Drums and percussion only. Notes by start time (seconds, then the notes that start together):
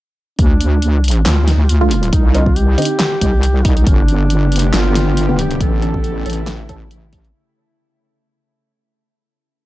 0.39 kick, closed hi-hat
0.61 closed hi-hat
0.82 closed hi-hat
1.04 closed hi-hat
1.08 closed hi-hat
1.11 closed hi-hat
1.26 snare, clap, closed hi-hat
1.48 snare, closed hi-hat
1.69 closed hi-hat
1.91 open hi-hat
2.03 closed hi-hat
2.13 kick, closed hi-hat
2.34 closed hi-hat
2.46 kick
2.56 closed hi-hat
2.78 closed hi-hat
2.82 closed hi-hat
2.85 closed hi-hat
3.00 snare, clap, closed hi-hat
3.21 kick, closed hi-hat
3.43 closed hi-hat
3.65 kick, open hi-hat
3.77 closed hi-hat
3.87 kick, closed hi-hat
4.08 closed hi-hat
4.30 closed hi-hat
4.52 closed hi-hat
4.56 closed hi-hat
4.59 closed hi-hat
4.74 snare, clap, closed hi-hat
4.95 snare, closed hi-hat
5.17 closed hi-hat
5.39 open hi-hat
5.51 closed hi-hat
5.61 kick, closed hi-hat
5.82 closed hi-hat
5.94 kick
6.04 closed hi-hat
6.26 closed hi-hat
6.30 closed hi-hat
6.33 closed hi-hat
6.47 snare, clap, closed hi-hat
6.69 kick, closed hi-hat
6.91 closed hi-hat
7.13 kick, open hi-hat
7.25 closed hi-hat